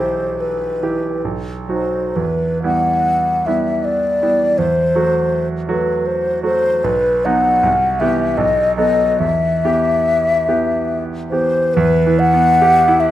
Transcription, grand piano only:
Already playing: B1
0.00 E3 E4 G4
0.83 E3 E4 G4
1.25 B1
1.68 F#3 D#4 F#4
2.16 E2
2.63 G3 B3 E4
3.47 G3 B3 E4
4.22 G3 B3 E4
4.59 E2
4.95 F#3 A3 F#4
5.68 F#3 A3 F#4
6.43 F#3 A3 F#4
6.84 B1
7.25 F#3 B3 D#4
7.63 C2
8.01 E3 B3 G4
8.38 B1
8.77 F#3 B3 A4
9.20 E2
9.64 E3 B3 G4
10.48 E3 B3 G4
11.32 E3 B3 G4
11.77 E2
12.07 E3
12.34 B3
12.62 G4
12.88 E4

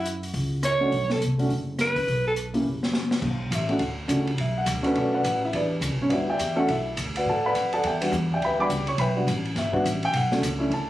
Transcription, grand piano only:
0.81 A3 C#4 D4 F#4
1.38 A3 C#4 D4 F#4
2.54 A#3 C#4 E4 G4
3.54 E5
3.69 A3 C#4 D4 F#4 F#5
4.08 A3 C#4 D4 F#4
4.40 E5
4.58 F#5
4.83 A3 B3 C#4 D4 F#4 B4
4.98 D4 A4 B4 D5
5.14 F#4 B4 D5 F#5
5.45 E4 E5
5.55 D4 G4 B4 D5
6.02 C#4 C#5
6.09 G3 B3 D4 F#4 E5
6.13 E4 G4 B4
6.30 G4 D5 E5 G5
6.56 A3 C#4 D4 F#4 A4 F#5
6.70 E4 E5
7.17 F#4 B4 D5 F#5
7.29 A4 D5 F#5 A5
7.46 B4 D5 F#5 B5
7.73 A4 D5 F#5 A5
7.87 G4 D5 E5 G5
8.01 G3 B3 D4 F#4
8.34 G4 D5 E5 G5
8.45 B4 E5 G5 B5
8.59 G3 B3 D4 F#4 D5 G5 B5 D6
8.88 C#5 C#6
8.99 B4 E5 G5 B5
9.16 G3 B3 D4 F#4
9.58 E5
9.72 G3 B3 D4 F#4
10.05 G5
10.16 F#5
10.31 A3 C#4 D4 F#4
10.59 A3 C#4 D4 E4
10.73 A5

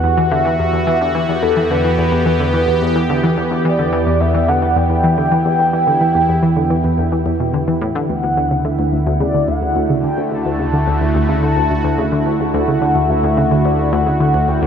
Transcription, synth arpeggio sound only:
0.04 E2
0.18 E3
0.31 D3
0.45 E3
0.59 E2
0.73 E2
0.87 E3
1.01 D3
1.15 E3
1.29 E2
1.43 E2
1.57 E3
1.71 D3
1.84 E3
1.98 E2
2.12 E2
2.26 E3
2.40 D3
2.54 E3
2.68 E2
2.82 E2
2.96 E3
3.10 D3
3.23 E3
3.37 E2
3.51 E2
3.65 E3
3.79 D3
3.93 E3
4.07 E2
4.21 E2
4.34 E3
4.48 D3
4.62 E3
4.76 E2
4.90 E2
5.04 E3
5.18 D3
5.32 E3
5.45 E2
5.59 E2
5.73 E3
5.87 D3
6.01 E3
6.15 E2
6.29 E2
6.43 E3
6.56 D3
6.70 E3
6.84 E2
6.98 E2
7.12 E3
7.26 E2
7.40 B2
7.54 D3
7.68 E3
7.81 A2
7.95 D3
8.09 D2
8.23 D2
8.37 D2
8.51 C#3
8.65 D3
8.79 D2
8.93 D2
9.07 D2
9.20 C#3
9.34 D3
9.48 D2
9.62 D2
9.76 D2
9.90 C#3
10.04 D3
10.18 D2
10.32 D2
10.45 D2
10.59 C#3
10.73 D3
10.87 D2
11.01 D2
11.15 D2
11.29 C#3
11.43 D3
11.57 D2
11.70 D2
11.84 D2
11.98 C#3
12.12 D3
12.26 D2
12.40 D2
12.54 D2
12.68 C#3
12.82 D3
12.96 D2
13.10 D2
13.23 D2
13.37 C#3
13.51 D3
13.65 D2
13.79 D2
13.93 D2
14.07 C#3
14.20 D3
14.34 D2
14.48 D2
14.62 D2

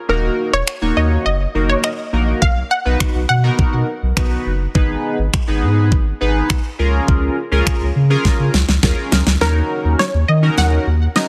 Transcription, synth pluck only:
0.09 A#4
0.54 C#5
0.97 D#5
1.26 D#5
1.70 C#5
1.84 D#5
2.42 F5
2.71 F#5
3.29 F#5
9.41 A#4
9.99 C#5
10.28 D#5
10.58 F#5
11.16 D#5

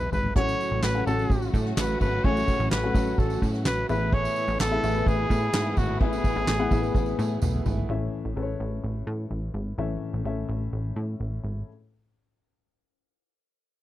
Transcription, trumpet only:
Already playing: B4
0.13 B4
0.36 C#5
0.83 B4
1.07 A4
1.77 B4
2.01 B4
2.24 C#5
2.71 B4
3.18 A4
3.66 B4
3.89 B4
4.13 C#5
4.60 A4
5.08 G#4
5.77 F#4
6.01 G#4

